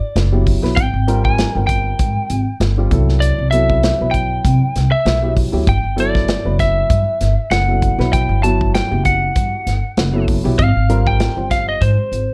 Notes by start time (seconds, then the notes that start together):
Already playing: D5
0.16 F#1, snare, closed hi-hat
0.32 F#3 B3 E4 G4
0.47 kick, open hi-hat
0.62 B1 F#3 B3 E4 B4, snare
0.76 G#1 G5, kick, closed hi-hat
0.94 G#1
1.07 G3 C4 F4 A#4, closed hi-hat
1.25 G#5, kick
1.38 snare, closed hi-hat
1.55 G1 G3 C4 F4 A#4 G5
1.67 G5, kick, closed hi-hat
1.99 G#2, kick, closed hi-hat
2.30 G#1 F4 G4, closed hi-hat
2.60 G1, snare, closed hi-hat
2.77 G3 C4 F4 G4
2.91 C2 F#3 B3 E4 A4, kick, closed hi-hat
3.09 snare
3.20 D5, closed hi-hat
3.39 C2
3.51 F#3 B3 E4 A4 E5, closed hi-hat
3.70 kick
3.83 snare, closed hi-hat
4.00 B1 F#3 B3 E4 B4
4.11 G5, kick, closed hi-hat
4.45 C3, kick, closed hi-hat
4.75 C2 E4 B4, snare, closed hi-hat
4.92 E5
5.05 B1, snare, closed hi-hat
5.23 F#3 B3 E4 G4
5.37 kick, open hi-hat
5.52 D2 F#3 B3 E4 G4
5.67 G1 G5, kick, closed hi-hat
5.84 G1
5.96 F#3 B3 E4 A4 D5, closed hi-hat
6.15 kick, snare
6.28 snare, closed hi-hat
6.45 F#1 F#3 B3 E4 B4
6.59 E5, kick, snare, closed hi-hat
6.90 G2, kick, closed hi-hat
7.21 G1 E4 A4, snare, closed hi-hat
7.51 F#1 F#5, snare, closed hi-hat
7.68 F#3 B3 E4 A4
7.82 kick, closed hi-hat
7.98 B1 F#3 B3 E4 B4, snare
8.13 G5, kick, closed hi-hat
8.29 G1
8.43 F#3 B3 E4 F#4 A5, closed hi-hat
8.61 kick
8.75 G5, snare, closed hi-hat
8.91 F#1 B3 E4 F#4 G4
9.05 F#5, kick, closed hi-hat
9.36 G2, kick, closed hi-hat
9.67 G1 E4 A4, snare, closed hi-hat
9.97 F#1 F#5, snare, closed hi-hat
10.13 F#3 B3 E4 A4
10.28 E5, kick, open hi-hat
10.44 B1 F#3 B3 E4 G4
10.59 G#1 F5, kick, closed hi-hat
10.76 G#1
10.89 G3 C4 F4 A#4, closed hi-hat
11.07 G5, kick
11.20 snare, closed hi-hat
11.37 G1 G3 C4 F4 C5
11.51 F5, kick, snare, closed hi-hat
11.69 D#5
11.81 G#2 C5, kick, closed hi-hat
12.12 G#1 F4 G#4, closed hi-hat